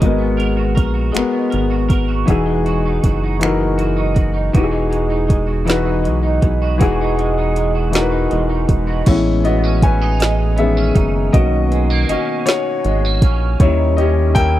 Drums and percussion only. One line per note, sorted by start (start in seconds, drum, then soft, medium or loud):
0.02 kick loud
0.02 closed hi-hat medium
0.40 closed hi-hat soft
0.77 kick medium
0.77 closed hi-hat soft
1.15 finger snap loud
1.15 closed hi-hat medium
1.52 closed hi-hat medium
1.90 kick medium
1.90 closed hi-hat soft
2.28 kick loud
2.28 closed hi-hat medium
2.66 closed hi-hat soft
3.04 kick medium
3.04 closed hi-hat soft
3.41 finger snap loud
3.41 closed hi-hat medium
3.79 closed hi-hat soft
4.16 kick medium
4.16 closed hi-hat soft
4.54 kick loud
4.54 closed hi-hat medium
4.93 closed hi-hat soft
5.30 kick medium
5.30 closed hi-hat medium
5.68 snare loud
5.68 closed hi-hat medium
6.05 closed hi-hat soft
6.42 kick medium
6.42 closed hi-hat soft
6.81 kick loud
6.81 closed hi-hat medium
7.19 closed hi-hat soft
7.56 closed hi-hat medium
7.93 snare loud
7.93 closed hi-hat medium
8.31 closed hi-hat soft
8.69 kick medium
8.69 closed hi-hat soft
9.06 kick loud
9.06 closed hi-hat medium
9.06 crash loud
9.45 closed hi-hat soft
9.82 kick loud
9.82 closed hi-hat medium
10.20 snare loud
10.20 closed hi-hat medium
10.58 closed hi-hat medium
10.95 kick loud
10.95 closed hi-hat medium
11.34 kick loud
11.34 closed hi-hat medium
11.72 closed hi-hat soft
12.09 closed hi-hat medium
12.47 snare loud
12.47 closed hi-hat medium
12.85 closed hi-hat medium
13.22 kick loud
13.22 closed hi-hat medium
13.60 kick loud
13.60 closed hi-hat medium
13.98 closed hi-hat soft
14.35 kick loud
14.35 closed hi-hat medium